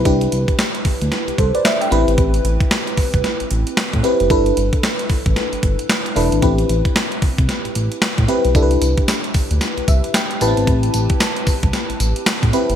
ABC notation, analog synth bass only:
X:1
M:4/4
L:1/16
Q:"Swing 16ths" 1/4=113
K:Am
V:1 name="Analog synth bass" clef=bass
C,,2 C,, z3 D,, D,, z C,, C,, z3 A,,, ^G,,, | A,,,2 A,,, z3 C,, C,, z A,,, A,,, z2 A,, z ^F,,, | G,,,2 G,,, z3 A,,, A,,, z G,,, G,,, z3 E,,, ^G,,, | A,,,2 A,,, z3 C,, C,, z A,,, A,,, z2 A,, z B,,, |
C,,2 C,, z3 D,, D,, z C,, C,, z3 A,,, ^G,,, | A,,,2 A,,, z3 C,, C,, z A,,, A,,, z2 A,, z ^F,,, |]